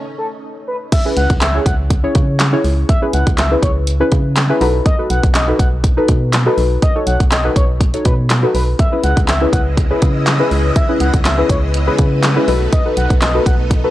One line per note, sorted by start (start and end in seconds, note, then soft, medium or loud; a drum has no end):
0.00 0.88 A3 medium
0.00 0.63 B3 medium
0.00 0.90 C#4 medium
0.00 0.64 D#4 medium
0.00 0.88 D#4 medium
0.00 0.64 A4 medium
0.18 0.27 A4 medium
0.68 0.76 B4 medium
0.92 1.09 E5 loud
0.92 kick loud
0.92 closed hi-hat loud
0.92 crash loud
1.05 1.45 C#4 medium
1.05 1.45 E4 medium
1.05 1.45 G#4 medium
1.05 1.45 B4 medium
1.17 1.27 C#2 medium
1.17 1.33 F#5 medium
1.17 closed hi-hat medium
1.30 1.59 C#2 medium
1.30 kick medium
1.30 closed hi-hat medium
1.41 1.58 E5 loud
1.41 snare medium
1.41 clap loud
1.41 closed hi-hat loud
1.54 1.94 C#4 medium
1.54 1.94 E4 medium
1.54 1.94 G#4 medium
1.54 1.94 C#5 medium
1.66 2.06 C#2 medium
1.66 1.75 F#5 medium
1.66 kick medium
1.66 closed hi-hat medium
1.90 kick medium
1.90 closed hi-hat loud
2.04 2.43 C#4 loud
2.04 2.43 E4 medium
2.04 2.43 G#4 loud
2.04 2.44 C#5 loud
2.15 2.55 C#3 loud
2.15 kick loud
2.15 closed hi-hat medium
2.40 snare medium
2.40 clap loud
2.40 closed hi-hat loud
2.53 2.92 C#4 medium
2.53 2.93 E4 medium
2.53 2.93 G#4 medium
2.53 2.93 C#5 loud
2.64 2.84 C#2 medium
2.64 open hi-hat medium
2.89 3.05 E5 loud
2.89 kick loud
2.89 closed hi-hat loud
3.02 3.42 C#4 loud
3.02 3.42 E4 medium
3.02 3.42 G#4 medium
3.02 3.42 B4 loud
3.13 3.24 C#2 loud
3.13 3.30 F#5 medium
3.13 closed hi-hat medium
3.27 3.56 C#2 medium
3.27 kick loud
3.27 closed hi-hat medium
3.38 3.54 E5 medium
3.38 snare medium
3.38 clap loud
3.38 closed hi-hat loud
3.51 3.91 C#4 medium
3.51 3.91 E4 medium
3.51 3.91 G#4 medium
3.51 3.91 B4 medium
3.62 4.03 C#2 loud
3.62 3.71 C#5 medium
3.62 kick medium
3.62 closed hi-hat medium
3.87 closed hi-hat loud
4.00 4.40 C#4 loud
4.00 4.40 E4 medium
4.00 4.40 G#4 medium
4.00 4.40 B4 loud
4.12 4.52 C#3 loud
4.12 kick medium
4.12 closed hi-hat medium
4.36 snare medium
4.36 clap loud
4.36 closed hi-hat loud
4.49 4.61 C#4 loud
4.49 4.61 E4 medium
4.49 4.61 G#4 medium
4.49 4.60 B4 loud
4.61 4.81 B1 loud
4.61 4.92 D#4 loud
4.61 4.92 F#4 medium
4.61 4.92 A4 loud
4.61 4.92 B4 loud
4.61 open hi-hat medium
4.86 5.02 D#5 loud
4.86 kick loud
4.86 closed hi-hat loud
4.99 5.38 D#4 medium
4.99 5.38 F#4 medium
4.99 5.39 A4 medium
4.99 5.39 B4 medium
5.10 5.21 B1 loud
5.10 5.26 F#5 medium
5.10 closed hi-hat medium
5.23 5.53 B1 medium
5.23 kick medium
5.23 closed hi-hat medium
5.35 5.51 D#5 medium
5.35 snare medium
5.35 clap loud
5.35 closed hi-hat loud
5.48 5.88 D#4 medium
5.48 5.88 F#4 medium
5.48 5.88 A4 medium
5.48 5.88 B4 medium
5.59 5.99 B1 medium
5.59 5.68 F#5 medium
5.59 kick medium
5.59 closed hi-hat medium
5.84 kick medium
5.84 closed hi-hat loud
5.97 6.37 D#4 loud
5.97 6.37 F#4 medium
5.97 6.37 A4 loud
5.97 6.37 B4 loud
6.08 6.49 B2 loud
6.08 kick loud
6.08 closed hi-hat medium
6.33 snare medium
6.33 clap loud
6.33 closed hi-hat loud
6.46 6.86 D#4 loud
6.46 6.86 F#4 medium
6.46 6.86 A4 medium
6.46 6.86 B4 loud
6.58 6.78 B1 loud
6.58 open hi-hat medium
6.82 6.99 D#5 loud
6.82 kick loud
6.82 closed hi-hat loud
6.95 7.35 D#4 medium
6.95 7.35 F#4 medium
6.95 7.35 A4 medium
6.95 7.35 C#5 loud
7.07 7.18 B1 loud
7.07 7.23 F#5 medium
7.07 closed hi-hat medium
7.20 7.50 B1 medium
7.20 kick medium
7.20 closed hi-hat medium
7.32 7.48 D#5 medium
7.32 snare medium
7.32 clap loud
7.32 closed hi-hat loud
7.44 7.84 D#4 medium
7.44 7.84 F#4 medium
7.44 7.84 A4 medium
7.44 7.84 B4 medium
7.56 7.96 B1 medium
7.56 7.65 C#5 medium
7.56 kick medium
7.56 closed hi-hat medium
7.81 kick medium
7.81 closed hi-hat loud
7.94 8.33 D#4 medium
7.94 8.34 F#4 medium
7.94 8.34 A4 medium
7.94 8.34 C#5 loud
7.94 closed hi-hat soft
8.05 8.45 B2 loud
8.05 8.14 B4 medium
8.05 kick loud
8.05 closed hi-hat medium
8.30 snare medium
8.30 clap loud
8.30 closed hi-hat loud
8.43 8.79 D#4 medium
8.43 8.79 F#4 medium
8.43 8.79 A4 medium
8.43 8.79 B4 medium
8.55 8.75 B1 medium
8.55 8.63 B4 medium
8.55 open hi-hat medium
8.79 12.44 C#3 medium
8.79 12.44 G#3 medium
8.79 13.90 B3 medium
8.79 12.44 E4 loud
8.79 12.44 D#5 medium
8.79 8.95 E5 loud
8.79 kick loud
8.79 closed hi-hat loud
8.92 9.32 C#4 medium
8.92 9.32 E4 medium
8.92 9.32 G#4 medium
8.92 9.32 B4 medium
9.04 9.14 C#2 loud
9.04 9.20 F#5 medium
9.04 closed hi-hat medium
9.17 9.46 C#2 medium
9.17 kick medium
9.17 closed hi-hat medium
9.28 9.45 E5 medium
9.28 snare medium
9.28 clap loud
9.28 closed hi-hat loud
9.41 9.81 C#4 medium
9.41 9.81 E4 medium
9.41 9.81 G#4 medium
9.41 9.81 B4 medium
9.53 9.93 C#2 medium
9.53 9.61 F#5 medium
9.53 kick medium
9.53 closed hi-hat medium
9.77 kick medium
9.77 closed hi-hat loud
9.90 10.30 C#4 loud
9.90 10.30 E4 medium
9.90 10.30 G#4 medium
9.90 10.30 B4 loud
10.02 10.42 C#3 loud
10.02 kick loud
10.02 closed hi-hat medium
10.27 snare medium
10.27 clap loud
10.27 closed hi-hat loud
10.39 10.79 C#4 medium
10.39 10.79 E4 medium
10.39 10.79 G#4 medium
10.39 10.80 B4 loud
10.51 10.71 C#2 medium
10.51 open hi-hat medium
10.76 10.92 E5 loud
10.76 kick loud
10.76 closed hi-hat loud
10.89 11.28 C#4 loud
10.89 11.29 E4 medium
10.89 11.29 G#4 medium
10.89 11.29 B4 loud
11.00 11.11 C#2 loud
11.00 11.17 F#5 medium
11.00 closed hi-hat medium
11.14 11.43 C#2 loud
11.14 kick medium
11.14 closed hi-hat medium
11.25 11.41 E5 medium
11.25 snare medium
11.25 clap loud
11.25 closed hi-hat loud
11.38 11.78 C#4 medium
11.38 11.78 E4 medium
11.38 11.78 G#4 medium
11.38 11.78 B4 medium
11.49 11.89 C#2 loud
11.49 11.58 C#5 medium
11.49 kick medium
11.49 closed hi-hat medium
11.74 closed hi-hat loud
11.87 12.27 C#4 loud
11.87 12.27 E4 medium
11.87 12.27 G#4 medium
11.87 12.27 B4 loud
11.99 12.39 C#3 loud
11.99 kick loud
11.99 closed hi-hat medium
12.23 snare medium
12.23 clap loud
12.23 closed hi-hat loud
12.36 12.48 C#4 loud
12.36 12.48 E4 medium
12.36 12.48 G#4 medium
12.36 12.47 B4 loud
12.48 12.68 B1 loud
12.48 13.90 A3 medium
12.48 13.90 D#4 loud
12.48 12.78 D#4 loud
12.48 12.78 F#4 medium
12.48 12.79 A4 medium
12.48 12.79 B4 loud
12.48 open hi-hat medium
12.73 12.89 D#5 loud
12.73 kick loud
12.73 closed hi-hat loud
12.85 13.25 D#4 medium
12.85 13.25 F#4 medium
12.85 13.25 A4 medium
12.85 13.26 B4 medium
12.97 13.08 B1 loud
12.97 13.13 F#5 medium
12.97 closed hi-hat medium
13.10 13.40 B1 loud
13.10 kick loud
13.10 closed hi-hat medium
13.22 13.38 D#5 medium
13.22 snare medium
13.22 clap loud
13.22 closed hi-hat loud
13.35 13.74 D#4 medium
13.35 13.75 F#4 medium
13.35 13.75 A4 medium
13.35 13.75 B4 medium
13.46 13.86 B1 loud
13.46 13.55 F#5 medium
13.46 kick medium
13.46 closed hi-hat medium
13.71 kick loud
13.71 closed hi-hat loud
13.84 13.90 D#4 loud
13.84 13.90 F#4 medium
13.84 13.90 A4 medium
13.84 13.90 B4 loud